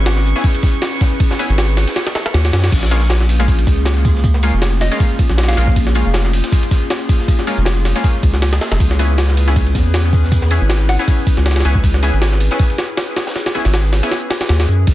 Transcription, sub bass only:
Already playing: G#1
1.49 G#1
2.34 D#2
2.53 F#2
2.72 A#1
3.67 C#2
4.53 F1
5.29 A#1
5.57 A#1
6.06 F1
7.57 F1
8.23 C#2
8.71 F1
8.80 C#2
9.75 E2
10.61 G#1
11.37 C#2
11.65 C#2
12.13 G#1
13.65 G#1
14.49 D#2
14.68 F#2
14.87 A#1

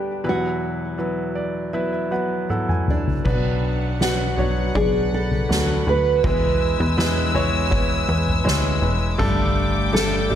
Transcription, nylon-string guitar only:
Already playing: G4
0.29 F#4
2.90 D4
4.02 F#4
4.76 G#4
5.14 A4
5.89 B4
9.94 A4

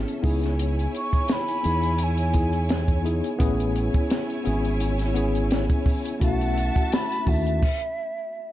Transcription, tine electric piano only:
Already playing: B3 C#4 E4 G#4
0.22 B3 D#4 E4 G#4
1.63 B3 D#4 E4 G#4
2.33 B3 D#4 E4 G#4
3.03 B3 D#4 E4 G#4
3.38 B3 C#4 E4 G#4
4.44 B3 C#4 E4 G#4
5.14 B3 C#4 E4 G#4
6.20 A3 C#4 E4 F#4
7.25 A3 C#4 E4 F#4

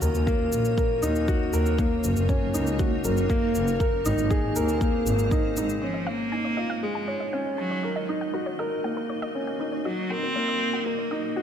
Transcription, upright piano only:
Already playing: F#4
0.02 A#4
0.27 A#3
0.77 A#4
1.02 D#4
1.28 F#4
1.53 A#4
1.79 A#3
2.29 C#4
2.54 D#4
2.79 F#4
3.05 A#4
3.30 A#3
3.80 A#4
4.06 D#4
4.30 G#4
4.56 A#4
4.81 A#3
5.32 D#4
5.57 D#4
5.82 C#4
6.32 D#4
6.58 F4
6.83 G#4
7.08 C#5
7.33 C#4
7.84 A#4
8.09 D#4
8.34 F#4
8.59 A#4
8.84 A#3
9.35 C#4
9.60 D#4
9.86 F#4
10.11 A#4
10.36 A#3
10.86 A#4
11.12 D#4
11.37 F#4

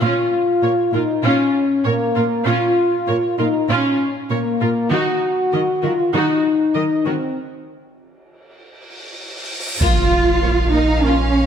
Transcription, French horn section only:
0.00 F4
0.94 D#4
1.25 C#4
1.86 A#3
2.48 F4
3.38 D#4
3.71 C#4
4.31 A#3
4.92 F#4
5.84 F4
6.15 D#4
7.06 C4

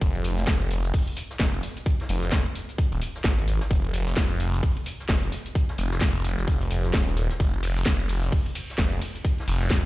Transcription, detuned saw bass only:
0.01 F1
0.48 F1
1.40 F1
2.09 F1
2.92 D#1
3.25 G#1
3.71 F1
4.17 F1
5.09 F1
5.78 F1
6.15 F1
6.38 F1
6.71 F1
6.94 D#1
7.40 F1
8.78 F1
9.48 F1

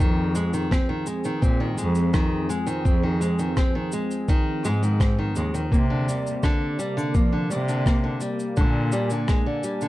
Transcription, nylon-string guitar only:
0.00 D#3
0.35 G#3
0.53 D#3
0.71 C4
0.89 D#3
1.07 G#3
1.25 D#3
1.42 C4
1.60 D#3
1.78 G#3
2.14 D#3
2.49 G#3
2.67 D#3
2.85 C4
3.03 D#3
3.21 G#3
3.39 D#3
3.57 C4
3.75 D#3
3.93 G#3
4.29 D#3
4.65 G#3
4.83 D#3
5.00 C4
5.19 D#3
5.36 G#3
5.54 D#3
5.72 A#3
5.90 D3
6.08 G3
6.43 D3
6.79 G3
6.97 D3
7.14 A#3
7.32 D3
7.50 G3
7.68 D3
7.86 A#3
8.04 D3
8.21 G3
8.57 D3
8.93 G3
9.11 D3
9.29 G#3
9.46 D3
9.64 G3
9.82 D3

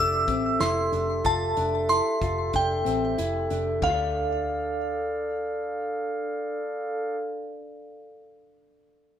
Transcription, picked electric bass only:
Already playing: F1
0.28 A1
0.61 F1
0.93 F1
1.25 F1
1.58 F1
2.22 F1
2.54 F1
2.86 A1
3.19 F1
3.51 F1
3.82 D2

